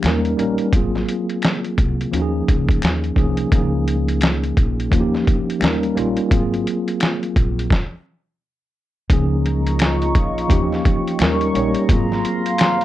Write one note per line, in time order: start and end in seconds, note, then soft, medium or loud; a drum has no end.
0.02 0.33 D#2 medium
0.02 0.32 G3 medium
0.02 0.33 A#3 medium
0.02 0.33 C#4 medium
0.02 0.34 D#4 medium
0.02 0.34 A#4 loud
0.02 finger snap medium
0.02 snare loud
0.02 closed hi-hat medium
0.25 closed hi-hat soft
0.37 0.63 G3 medium
0.37 0.64 A#3 medium
0.37 0.64 C#4 medium
0.37 0.65 D#4 medium
0.37 0.65 A#4 medium
0.37 closed hi-hat medium
0.58 closed hi-hat soft
0.73 1.03 G#1 medium
0.73 1.68 F#3 medium
0.73 1.68 A#3 medium
0.73 1.69 C4 medium
0.73 1.69 F4 medium
0.73 1.70 G#4 medium
0.73 kick loud
0.73 closed hi-hat medium
0.95 snare soft
1.09 closed hi-hat medium
1.30 closed hi-hat soft
1.42 finger snap medium
1.42 snare loud
1.42 closed hi-hat medium
1.65 closed hi-hat soft
1.78 2.08 C2 medium
1.78 kick medium
1.78 closed hi-hat medium
2.01 closed hi-hat soft
2.11 2.42 D#2 medium
2.11 2.99 F3 medium
2.11 2.99 A#3 medium
2.11 3.00 C#4 medium
2.11 3.00 D#4 medium
2.11 2.22 F#4 medium
2.11 closed hi-hat medium
2.21 3.04 G#4 loud
2.48 2.78 C#2 medium
2.48 kick medium
2.48 closed hi-hat medium
2.68 kick medium
2.68 closed hi-hat soft
2.82 3.12 D#2 medium
2.82 finger snap medium
2.82 snare loud
2.82 closed hi-hat medium
3.04 closed hi-hat soft
3.15 3.46 C2 medium
3.15 3.42 F3 medium
3.15 3.42 A#3 medium
3.15 3.43 C#4 medium
3.15 3.43 D#4 medium
3.15 3.44 G#4 medium
3.15 kick loud
3.15 closed hi-hat medium
3.37 closed hi-hat medium
3.52 4.53 C#2 loud
3.52 3.60 D#3 medium
3.52 4.48 A#3 medium
3.52 4.48 C#4 medium
3.52 4.48 D#4 medium
3.52 4.49 G#4 medium
3.52 kick loud
3.52 closed hi-hat medium
3.59 4.50 F3 medium
3.88 closed hi-hat medium
4.08 closed hi-hat medium
4.21 finger snap medium
4.21 snare loud
4.21 closed hi-hat medium
4.44 closed hi-hat soft
4.57 4.87 A#1 medium
4.57 kick loud
4.57 closed hi-hat medium
4.80 closed hi-hat soft
4.90 5.22 D#2 loud
4.90 5.50 F3 medium
4.90 5.50 A#3 medium
4.90 5.51 C#4 medium
4.90 5.51 D#4 medium
4.90 5.01 F4 medium
4.90 kick medium
4.90 closed hi-hat medium
5.00 5.55 G4 medium
5.15 snare soft
5.27 kick medium
5.27 closed hi-hat medium
5.50 closed hi-hat soft
5.60 5.91 D#2 medium
5.60 5.90 G3 medium
5.60 5.91 A#3 medium
5.60 5.91 C#4 medium
5.60 5.91 D#4 medium
5.60 5.92 A#4 medium
5.60 finger snap medium
5.60 snare loud
5.60 closed hi-hat medium
5.83 closed hi-hat soft
5.95 6.15 A#1 medium
5.95 6.22 G3 medium
5.95 6.22 A#3 medium
5.95 6.22 C#4 medium
5.95 6.23 D#4 medium
5.95 6.23 F4 medium
5.95 closed hi-hat medium
6.17 closed hi-hat soft
6.30 6.61 G#1 loud
6.30 7.26 F#3 medium
6.30 7.26 A#3 medium
6.30 7.26 C4 medium
6.30 7.27 F4 medium
6.30 7.27 G#4 medium
6.30 kick loud
6.30 closed hi-hat medium
6.54 closed hi-hat soft
6.67 closed hi-hat medium
6.88 closed hi-hat medium
7.00 finger snap medium
7.00 snare loud
7.00 closed hi-hat medium
7.23 closed hi-hat soft
7.36 7.66 A#1 medium
7.36 kick medium
7.36 closed hi-hat medium
7.59 closed hi-hat soft
7.70 kick loud
7.70 snare medium
9.09 10.15 C#2 loud
9.09 10.05 F3 medium
9.09 10.05 A#3 medium
9.09 10.06 C#4 medium
9.09 10.06 D#4 medium
9.09 11.17 F4 medium
9.09 11.17 D#5 medium
9.09 10.48 A#5 medium
9.09 11.17 C#6 medium
9.09 kick loud
9.09 closed hi-hat medium
9.13 10.07 G#4 medium
9.46 closed hi-hat medium
9.67 closed hi-hat medium
9.79 finger snap medium
9.79 snare loud
9.79 closed hi-hat medium
10.02 closed hi-hat soft
10.15 10.45 A#1 medium
10.15 kick loud
10.15 closed hi-hat medium
10.38 closed hi-hat soft
10.48 10.80 D#2 medium
10.48 11.08 F3 medium
10.48 11.08 A#3 medium
10.48 11.09 C#4 medium
10.48 11.09 D#4 medium
10.48 11.10 G4 loud
10.48 11.18 G5 medium
10.48 kick loud
10.48 closed hi-hat medium
10.72 snare soft
10.85 kick medium
10.85 closed hi-hat medium
11.08 closed hi-hat soft
11.18 11.49 D#2 loud
11.18 11.49 G3 medium
11.18 11.49 A#3 medium
11.18 11.50 C#4 medium
11.18 11.50 D#4 medium
11.18 11.88 G4 medium
11.18 11.88 D#5 medium
11.18 12.85 A#5 medium
11.18 11.88 C#6 medium
11.18 finger snap medium
11.18 snare loud
11.18 closed hi-hat medium
11.22 11.51 A#4 loud
11.41 closed hi-hat soft
11.53 11.73 A#1 medium
11.53 11.80 G3 medium
11.53 11.80 A#3 medium
11.53 11.80 C#4 medium
11.53 11.81 D#4 medium
11.53 11.81 C#5 medium
11.53 closed hi-hat medium
11.75 closed hi-hat soft
11.88 12.19 G#1 loud
11.88 12.85 F#3 medium
11.88 12.84 F#3 medium
11.88 12.84 A#3 medium
11.88 12.85 C4 medium
11.88 12.85 F4 medium
11.88 12.85 F5 medium
11.88 12.85 C6 medium
11.88 kick loud
11.88 closed hi-hat medium
11.92 12.85 G#4 medium
12.12 snare soft
12.25 closed hi-hat medium
12.46 closed hi-hat medium
12.58 finger snap medium
12.58 snare loud
12.58 closed hi-hat medium
12.81 closed hi-hat soft